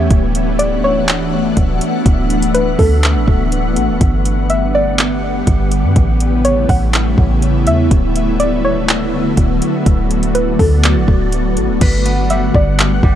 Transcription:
Already playing: E3 B3
0.10 D1 A3 B3 D4 F#4 E5 F#5, kick, closed hi-hat
0.35 closed hi-hat
0.59 D5, closed hi-hat
0.84 C#5
1.08 clap, closed hi-hat
1.57 D1, kick, closed hi-hat
1.81 closed hi-hat
2.06 D1, kick, closed hi-hat
2.30 closed hi-hat
2.42 closed hi-hat
2.54 B4, closed hi-hat
2.79 D2 A4, kick, open hi-hat
3.03 clap, closed hi-hat
3.15 A1
3.28 D1, kick
3.52 closed hi-hat
3.76 A1, closed hi-hat
3.89 D1
4.01 G1 D3 G3 G4 F#5, kick, closed hi-hat
4.25 closed hi-hat
4.50 E5, closed hi-hat
4.75 D5
4.98 clap, closed hi-hat
5.47 G1, kick, closed hi-hat
5.72 closed hi-hat
5.84 G2
5.96 A1 C#3 A3 E4 C#5, kick, closed hi-hat
6.20 closed hi-hat
6.45 C#5, closed hi-hat
6.69 A1 F#5, kick, open hi-hat
6.94 clap, closed hi-hat
7.18 A1, kick
7.42 closed hi-hat
7.67 E2 E5, closed hi-hat
7.91 D1 D3 F#3 B3 F#4 E5, kick, closed hi-hat
8.16 closed hi-hat
8.40 D5, closed hi-hat
8.65 C#5
8.89 clap, closed hi-hat
9.37 D1, kick, closed hi-hat
9.62 closed hi-hat
9.86 D1 F#4 D5, kick, closed hi-hat
10.11 closed hi-hat
10.23 closed hi-hat
10.35 B4, closed hi-hat
10.59 D2 A4, kick, open hi-hat
10.84 clap, closed hi-hat
10.96 A1
11.08 D1, kick
11.32 closed hi-hat
11.57 A1, closed hi-hat
11.69 D1
11.81 G1 D3 G3 B3 G4 B4 F#5, kick, closed hi-hat, crash
12.05 B3, closed hi-hat
12.30 G3 E5, closed hi-hat
12.54 G1 D5, kick
12.79 clap, closed hi-hat
13.03 G1 G3, kick

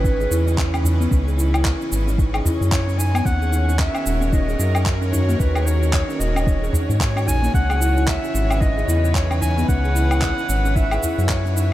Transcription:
Already playing: G#1 C#3 E3 C#4 F#4 B4 C#5 D#5
0.04 D#4, kick, cabasa
0.20 G#4, cabasa
0.31 E2 E4, cabasa
0.47 C#5, cabasa
0.58 kick, clap, cabasa
0.74 C#4, cabasa, low woodblock
0.84 D#4, udu, cabasa
1.00 B3, cabasa
1.11 C#2 C#4, kick, cabasa
1.27 G#4, cabasa
1.38 E4, cabasa
1.54 E4, cabasa, low woodblock
1.65 C#4, kick, clap, cabasa
1.80 C#4, cabasa
1.91 G#1 C#4, cabasa
2.07 C#4, cabasa
2.18 D#4, kick, cabasa
2.34 G#4, cabasa, low woodblock
2.45 E4, udu, cabasa
2.61 F#2 C#5, cabasa
2.72 C#5, kick, clap, cabasa
2.87 C#4, cabasa
2.98 D#4 G#5, cabasa
3.14 B3, cabasa, low woodblock
3.25 D#2 D#3 C#4 F#5, kick, cabasa
3.41 G#4, cabasa
3.52 D#4 C#5, cabasa
3.68 D#4, cabasa
3.74 F#4
3.79 C#4 A#4 E5, kick, clap, cabasa
3.95 C#4, cabasa, low woodblock
4.05 D#1 C#4, cabasa
4.21 C#4, cabasa
4.26 E5
4.32 D#4 D#5, kick, cabasa
4.48 G#4, cabasa
4.59 F#2 D#4, cabasa
4.75 C#5, cabasa, low woodblock
4.85 A#4, kick, clap, cabasa
5.02 C#4, cabasa
5.12 D#4 C#5, udu, cabasa
5.29 A#3, cabasa
5.39 D#2 C#4 B4, kick, cabasa
5.55 G#4, cabasa, low woodblock
5.66 D#4 C#5, cabasa
5.82 D#4, cabasa
5.93 C#4, kick, clap, cabasa
6.08 C#4, cabasa
6.19 D#1 C#4 D#5, cabasa
6.35 C#4, cabasa, low woodblock
6.46 D#4, kick, cabasa
6.62 G#4, cabasa
6.73 D#4, udu, cabasa
6.89 G#2 C#5, cabasa
7.00 A#4 C#5, kick, clap, cabasa
7.15 C#4, cabasa, low woodblock
7.27 A#1 D#4 G#5, udu, cabasa
7.42 A#3, cabasa
7.54 C#2 C#3 C#4 F#5, kick, cabasa
7.69 G#4, cabasa, low woodblock
7.76 E3
7.80 E4, cabasa
7.96 E4, cabasa
8.07 C#4 E5, kick, clap, cabasa
8.23 C#4, cabasa
8.34 G#1 C#4, cabasa
8.48 C#4 B4, cabasa, low woodblock
8.61 D#4 D#5, kick, cabasa
8.77 G#4, cabasa
8.88 E2 E4, cabasa
9.04 C#5, cabasa
9.15 B4 C#5, kick, clap, cabasa
9.30 C#4, cabasa, low woodblock
9.41 D#4 G#5, udu, cabasa
9.57 B3, cabasa
9.68 C#2 C#4 F#5, kick, cabasa
9.84 G#4, cabasa
9.95 E4, cabasa
10.11 E4, cabasa, low woodblock
10.22 C#4, kick, clap, cabasa
10.38 C#4, cabasa
10.49 G#1 C#4, cabasa
10.65 C#4, cabasa
10.76 D#4 E5, kick, cabasa
10.91 G#4, cabasa, low woodblock
11.02 E4, udu, cabasa
11.18 F#2 C#5, cabasa
11.29 C#5, kick, clap, cabasa
11.45 C#4, cabasa
11.55 D#4 E5, cabasa

